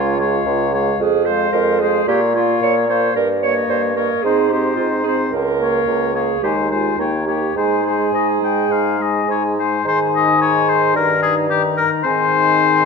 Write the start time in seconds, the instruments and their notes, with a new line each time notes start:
Already playing: bassoon C#2, french horn G#3, clarinet F4, oboe C#5, flute F5
0.19 french horn G#3, oboe C#5, flute F5
0.46 bassoon C#2
0.74 french horn G#3, oboe C#5, flute F5
1.00 bassoon F2, clarinet G#4
1.25 french horn G#3, clarinet C5, oboe C5, flute F5
1.53 bassoon F2, clarinet A#4
1.79 french horn G#3, clarinet G#4, oboe C5, flute F5
2.07 bassoon A#2, french horn A#3, clarinet G4, oboe C#5, flute F5
2.34 french horn A#3, clarinet F4, oboe C#5, flute F5
2.62 bassoon A#2, clarinet C#5
2.89 french horn A#3, clarinet C5, oboe C#5, flute F5
3.15 bassoon G2, clarinet A#4
3.42 french horn A#3, clarinet C#5, oboe C#5, flute D#5
3.69 bassoon G2, clarinet C5
3.96 french horn A#3, clarinet A#4, oboe C#5, flute D#5
4.23 bassoon G#2, french horn C4, clarinet G#4, oboe C5, flute D#5
4.50 french horn C4, clarinet G4, oboe C5, flute D#5
4.76 bassoon G#2, clarinet F4
5.04 french horn C4, clarinet G#4, flute D#5
5.08 oboe C5
5.31 bassoon C#2, clarinet A#4
5.60 french horn A#3, oboe C#5, flute F5
5.87 bassoon C#2
6.13 french horn A#3, clarinet G#4, oboe C#5, flute F5
6.42 bassoon D#2, french horn G#3, clarinet G4, oboe C5, flute G#5
6.71 french horn G#3, clarinet F4, oboe C5, flute G#5
6.98 bassoon D#2, french horn A#3, clarinet D#4, oboe C#5, flute G5
7.26 french horn A#3, clarinet G4, oboe C#5, flute G5
7.56 bassoon G#2, french horn G#3, clarinet G#4, oboe C5, flute G#5
7.85 french horn G#3, oboe C5, flute G#5
8.13 bassoon G#2, oboe D#5
8.42 french horn G#3, oboe G5, flute G#5
8.70 bassoon G#2, oboe F5
9.00 french horn G#3, oboe D#5, flute G#5
9.28 bassoon G#2, oboe C#5
9.57 french horn G#3, oboe C5, flute G#5
9.85 bassoon G#2, french horn D#3, clarinet G#4, oboe C5, flute G#5
10.15 oboe D#5
10.41 oboe C#5
10.69 oboe C5
10.95 bassoon G2, french horn D#3, clarinet D#4, oboe A#4, flute A#5
11.22 oboe G#4
11.50 french horn D#3, clarinet D#4, oboe G4, flute A#5
11.77 oboe A#4
12.04 bassoon G#2, french horn D#3, clarinet C4, oboe C5, flute G#5